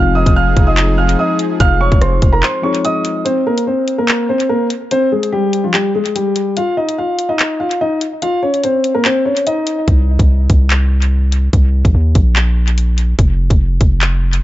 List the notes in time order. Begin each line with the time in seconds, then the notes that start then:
Already playing: F1 F3 G#3 C4 D#4 F4 G#4 F5 F6
0.15 D#5 D#6
0.26 F1, kick, closed hi-hat
0.36 F5 F6
0.57 F1, kick, closed hi-hat
0.67 D#5 D#6
0.77 clap, closed hi-hat
0.98 F5 F6
1.09 closed hi-hat
1.19 D#5 D#6
1.39 closed hi-hat
1.60 F1 F5 F6, kick, closed hi-hat
1.81 C#5 C#6
1.92 F1, kick, closed hi-hat
2.01 F1 C5 C6, cross-stick, closed hi-hat
2.22 F1, kick, closed hi-hat
2.33 A#4 A#5
2.43 C5 C6, clap
2.62 F3 G#3 C4 D#4 G#4 C#5 C#6
2.75 closed hi-hat
2.85 D#5 D#6, closed hi-hat
3.05 closed hi-hat
3.25 C4 C5, closed hi-hat
3.47 A#3 A#4
3.58 closed hi-hat
3.67 C4 C5
3.88 closed hi-hat
3.98 A#3 A#4
4.08 clap, closed hi-hat
4.29 C4 C5
4.40 closed hi-hat
4.49 A#3 A#4
4.70 closed hi-hat
4.91 C4 C5, closed hi-hat
5.12 G#3 G#4
5.23 closed hi-hat
5.32 G3 G4
5.53 closed hi-hat
5.64 F3 F4
5.73 G3 G4, clap
5.95 G#3 G#4
6.06 closed hi-hat
6.15 G3 G4, closed hi-hat
6.36 closed hi-hat
6.57 F4 F5, closed hi-hat
6.77 D#4 D#5
6.89 closed hi-hat
6.98 F4 F5
7.19 closed hi-hat
7.29 D#4 D#5
7.39 clap, closed hi-hat
7.60 F4 F5
7.71 closed hi-hat
7.81 D#4 D#5
8.01 closed hi-hat
8.22 F4 F5, closed hi-hat
8.43 C#4 C#5
8.54 closed hi-hat
8.64 C4 C5, closed hi-hat
8.84 closed hi-hat
8.95 A#3 A#4
9.05 C4 C5, clap
9.25 C#4 C#5
9.37 closed hi-hat
9.47 D#4 D#5, closed hi-hat
9.67 closed hi-hat
9.88 C2, kick, closed hi-hat
10.19 C2, kick, closed hi-hat
10.50 C2, kick, closed hi-hat
10.70 clap, closed hi-hat
11.02 closed hi-hat
11.32 closed hi-hat
11.53 C2, kick, closed hi-hat
11.85 A#1, kick, closed hi-hat
11.95 D#2
12.15 A#1, kick, closed hi-hat
12.36 clap
12.68 closed hi-hat
12.78 closed hi-hat
12.98 closed hi-hat
13.19 F1, kick, closed hi-hat
13.50 F1, kick, closed hi-hat
13.81 F1, kick, closed hi-hat
14.01 clap, closed hi-hat
14.33 closed hi-hat